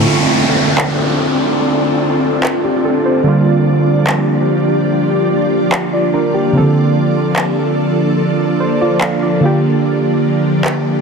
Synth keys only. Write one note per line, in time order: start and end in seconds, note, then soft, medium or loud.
0.00 3.20 D3 medium
0.00 3.21 A3 medium
0.00 2.40 C4 medium
0.00 0.15 C#4 medium
0.00 0.15 A4 medium
0.06 2.44 F4 medium
2.64 2.83 G4 medium
2.85 3.04 C4 soft
2.85 3.04 A4 medium
3.06 3.44 C5 medium
3.24 6.49 D3 medium
3.24 6.50 G3 medium
3.24 5.69 A#3 medium
3.28 5.69 F4 medium
5.93 6.13 F4 medium
5.93 6.12 D5 medium
6.14 6.33 D4 medium
6.14 6.33 A#4 medium
6.34 6.53 A#3 medium
6.34 6.73 G4 medium
6.53 6.60 C#3 medium
6.53 9.38 A#3 medium
6.53 9.39 C4 medium
6.57 9.39 D3 medium
6.57 8.57 A4 medium
8.60 8.79 C5 medium
8.81 9.01 F4 medium
8.81 9.00 D5 medium
9.02 9.21 A4 medium
9.02 9.21 F5 medium
9.23 9.43 F4 soft
9.23 9.61 D5 medium
9.40 11.01 D3 medium
9.40 11.01 A#3 medium
9.40 11.01 F4 medium
9.45 11.01 G4 medium